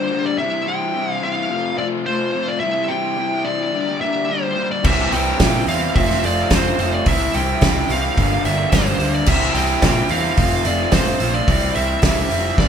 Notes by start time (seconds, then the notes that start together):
Already playing: G3 A#3 D4 G4 C5 D5 A#5
0.10 G2 D3 G3 A#3 D4 G4
0.26 D5
0.38 C3 E3 G3 C4 E4 E5 C6
0.66 C3 E3 G3 C4 E4 G5
0.94 C3 E3 G3 C4 E4
1.12 F5
1.22 C3 E3 G3 C4 E4 F5
1.49 F2 C3 F3 A3 C4 F4 A4 F5 C6
1.77 F2 C3 F3 A3 C4 F4 D5
2.04 F2 C3 F3 A3 C4 F4 C5
2.33 F2 C3 F3 A3 C4 F4
2.48 D5
2.60 C3 E3 G3 C4 E4 G4 E5
2.88 C3 E3 G3 C4 E4 G5
3.16 C3 E3 G3 C4 E4
3.44 C3 E3 G3 C4 E4 D5
3.72 G2 D3 G3 A#3 D4 G4 D5 A#5
4.00 G2 D3 G3 A#3 D4 G4 E5
4.28 G2 D3 G3 A#3 D4 G4 C5
4.56 G2 D3 G3 A#3 D4 G4
4.71 D5
4.84 C2 C3 E3 G3 C4 E4 G4 E5 C6, kick, crash
5.12 C2 C3 E3 G3 C4 E4 G4 G5, open hi-hat, tambourine
5.26 tambourine
5.40 A#2 C3 E3 G3 C4 E4 G4, kick, snare, open hi-hat, tambourine
5.67 E2 C3 E3 G3 C4 E4 G4 F5, open hi-hat, tambourine
5.95 F1 F2 C3 F3 A3 C4 F4 A4 E5 F5, kick, open hi-hat
6.10 snare
6.23 F1 F2 C3 F3 A3 C4 F4 D5, open hi-hat, tambourine
6.36 tambourine
6.50 F1 F2 C3 F3 A3 C4 F4, kick, snare, open hi-hat, tambourine
6.55 C5
6.65 tambourine
6.78 F1 F2 C3 F3 A3 C4 F4, open hi-hat
6.92 D5, tambourine
7.06 C2 C3 E3 G3 C4 E4 G4 E5, kick, open hi-hat
7.33 C2 C3 E3 G3 C4 E4 G5, open hi-hat, tambourine
7.47 tambourine
7.61 C2 C3 E3 G3 C4 E4, kick, snare, open hi-hat, tambourine
7.89 C2 C3 E3 G3 C4 E4 F5, open hi-hat, tambourine
8.04 tambourine
8.16 G1 G2 D3 G3 A#3 D4 G4 D5 A#5, kick, open hi-hat
8.44 G1 G2 D3 G3 A#3 D4 G4 E5, open hi-hat, tambourine
8.72 G1 G2 D3 G3 A#3 D4 G4 C5, kick, snare, open hi-hat, tambourine
8.87 tambourine
8.99 D2 G2 D3 G3 A#3 D4 G4, open hi-hat
9.14 D5, tambourine
9.26 C2 C3 E3 G3 C4 E4 G4 E5 C6, kick, crash
9.54 C2 C3 E3 G3 C4 E4 G4 G5, open hi-hat, tambourine
9.82 A#2 C3 E3 G3 C4 E4 G4, kick, snare, open hi-hat, tambourine
10.09 E2 C3 E3 G3 C4 E4 G4 F5, open hi-hat, tambourine
10.36 F1 F2 C3 F3 A3 C4 F4 A4 F5, kick, open hi-hat
10.65 F1 F2 C3 F3 A3 C4 F4 D5, open hi-hat, tambourine
10.91 F1 F2 C3 F3 A3 C4 F4 C5, kick, snare, open hi-hat, tambourine
11.05 tambourine
11.20 A#1 F2 C3 F3 A3 C4 F4, open hi-hat
11.34 D5, tambourine
11.47 C2 C3 E3 G3 C4 E4 G4 E5 C6, kick, open hi-hat
11.62 tambourine
11.75 C2 C3 E3 G3 C4 E4 G4 E5, open hi-hat, tambourine
11.89 tambourine
12.02 C2 C3 E3 G3 E4, kick, snare, open hi-hat, tambourine
12.06 C4 G4
12.17 tambourine
12.31 F1 C3 E3 G3 C4 E4 G4, open hi-hat, tambourine
12.45 tambourine
12.57 G1 G2 D3 G3 A#3 D4 G4 D5 A#5, kick, snare